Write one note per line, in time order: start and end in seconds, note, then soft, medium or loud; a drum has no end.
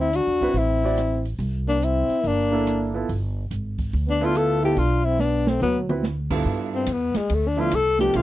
0.00 0.24 D2 medium
0.00 0.13 C4 medium
0.00 0.17 E4 medium
0.12 0.56 D4 medium
0.12 0.59 F#4 medium
0.12 closed hi-hat soft
0.27 0.40 E2 medium
0.41 0.53 C#2 medium
0.41 0.54 C4 medium
0.41 0.55 E4 medium
0.41 0.55 F#4 medium
0.41 0.55 B4 medium
0.41 open hi-hat soft
0.54 1.35 A1 medium
0.54 1.25 C4 medium
0.54 open hi-hat soft
0.58 1.27 E4 medium
0.84 0.97 C4 medium
0.84 0.97 E4 medium
0.84 0.97 F#4 medium
0.84 0.98 D5 medium
0.98 cross-stick medium
0.98 closed hi-hat soft
1.25 open hi-hat soft
1.39 2.05 C2 medium
1.39 open hi-hat soft
1.68 1.83 A#3 medium
1.68 1.85 D4 medium
1.81 2.25 C4 medium
1.81 2.29 E4 medium
1.81 closed hi-hat medium
2.09 muted upright bass stroke soft
2.09 open hi-hat soft
2.23 3.04 G1 medium
2.23 2.94 A#3 medium
2.23 open hi-hat soft
2.27 2.96 D4 medium
2.52 2.91 A#3 medium
2.52 2.92 D4 medium
2.52 2.92 E4 medium
2.52 2.92 A4 medium
2.67 cross-stick medium
2.67 closed hi-hat medium
2.94 3.07 B3 medium
2.94 3.08 E4 medium
2.94 3.08 F4 medium
2.94 3.08 A4 medium
3.09 3.48 G1 medium
3.09 open hi-hat soft
3.51 3.90 G#1 medium
3.51 closed hi-hat medium
3.78 kick medium
3.78 open hi-hat soft
3.93 4.73 D2 medium
3.93 open hi-hat soft
4.07 4.25 B3 medium
4.07 4.26 D4 medium
4.21 4.60 B3 medium
4.21 4.37 D4 medium
4.21 4.60 E4 medium
4.21 4.61 F4 medium
4.21 4.38 F4 medium
4.21 4.61 A4 medium
4.35 4.62 F4 medium
4.35 4.64 A4 medium
4.35 cross-stick medium
4.35 closed hi-hat medium
4.62 4.76 B3 medium
4.62 4.78 E4 medium
4.62 4.76 E4 medium
4.62 4.77 F4 medium
4.62 4.80 G4 medium
4.62 4.77 A4 medium
4.62 open hi-hat soft
4.76 5.57 B1 medium
4.76 5.08 D4 medium
4.76 5.06 F4 medium
4.76 open hi-hat soft
5.05 5.23 C4 medium
5.05 5.22 E4 medium
5.19 5.50 B3 medium
5.19 5.50 D4 medium
5.19 snare soft
5.47 5.62 A3 medium
5.47 5.62 C4 medium
5.47 snare medium
5.61 6.42 D2 medium
5.61 5.87 F#3 medium
5.61 5.79 B3 medium
5.61 mid tom medium
5.89 6.02 C4 medium
5.89 6.02 E4 medium
5.89 6.03 F#4 medium
5.89 6.03 B4 medium
5.89 mid tom medium
6.03 snare medium
6.30 6.84 G2 medium
6.30 6.85 B3 medium
6.30 6.85 E4 medium
6.30 6.85 F4 medium
6.30 6.85 A4 medium
6.30 kick medium
6.30 crash medium
6.45 6.86 G2 medium
6.75 6.94 C4 medium
6.86 7.13 E2 medium
6.86 hi-hat pedal medium
6.86 ride medium
6.92 7.19 B3 medium
7.14 7.35 G#3 medium
7.14 muted upright bass stroke soft
7.14 snare medium
7.14 ride soft
7.30 7.71 D2 medium
7.30 ride medium
7.34 7.49 A3 medium
7.47 7.61 D4 medium
7.56 7.70 F3 medium
7.56 7.70 A3 medium
7.56 7.70 B3 medium
7.56 7.70 D4 medium
7.56 7.71 E4 medium
7.56 7.77 F4 medium
7.71 8.13 C2 medium
7.71 8.00 A4 loud
7.71 hi-hat pedal medium
7.71 ride medium
7.99 8.12 F3 medium
7.99 8.12 A3 medium
7.99 8.12 B3 medium
7.99 8.13 D4 medium
7.99 8.18 G4 medium
7.99 8.22 G4 medium
7.99 snare soft
8.13 8.22 B1 medium
8.13 8.22 F3 medium
8.13 8.22 A3 medium
8.13 8.22 B3 soft
8.13 8.22 D4 soft
8.13 8.22 E4 medium
8.13 8.22 F4 medium
8.13 ride medium